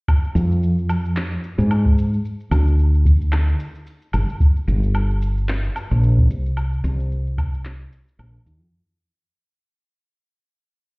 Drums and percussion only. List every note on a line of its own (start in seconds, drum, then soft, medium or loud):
0.08 kick loud
0.08 low woodblock medium
0.08 shaker soft
0.24 shaker soft
0.36 shaker medium
0.51 shaker soft
0.63 shaker soft
0.78 shaker soft
0.89 low woodblock medium
0.89 shaker medium
1.05 shaker soft
1.17 clap medium
1.17 shaker soft
1.32 shaker soft
1.44 shaker medium
1.60 shaker soft
1.71 low woodblock medium
1.71 shaker soft
1.86 kick medium
1.86 shaker soft
1.98 shaker medium
2.14 shaker soft
2.25 shaker soft
2.40 shaker soft
2.51 low woodblock medium
2.51 shaker medium
2.67 shaker soft
2.79 shaker soft
2.94 shaker soft
3.05 kick loud
3.05 shaker medium
3.21 shaker soft
3.32 clap medium
3.32 low woodblock medium
3.32 shaker soft
3.48 shaker soft
3.60 shaker medium
3.75 shaker soft
3.87 shaker soft
4.02 shaker soft
4.13 low woodblock medium
4.13 shaker medium
4.29 shaker soft
4.40 kick loud
4.40 shaker soft
4.56 shaker soft
4.68 shaker medium
4.83 shaker soft
4.95 low woodblock medium
4.95 shaker soft
5.10 shaker soft
5.22 shaker medium
5.38 shaker soft
5.49 clap medium
5.49 shaker soft
5.65 shaker soft
5.76 low woodblock medium
5.76 shaker medium
5.91 shaker soft
6.03 shaker soft
6.18 kick loud
6.18 shaker soft
6.30 shaker medium
6.46 shaker soft
6.57 low woodblock medium
6.57 shaker soft
6.73 shaker soft
6.84 shaker medium
7.00 shaker soft
7.12 shaker soft
7.27 shaker soft
7.38 kick loud
7.38 low woodblock medium
7.38 shaker medium
7.54 shaker soft
7.65 clap medium
7.65 shaker soft
7.81 shaker soft
7.92 shaker medium
8.08 shaker soft
8.19 low woodblock medium
8.19 shaker soft
8.35 shaker soft
8.47 shaker medium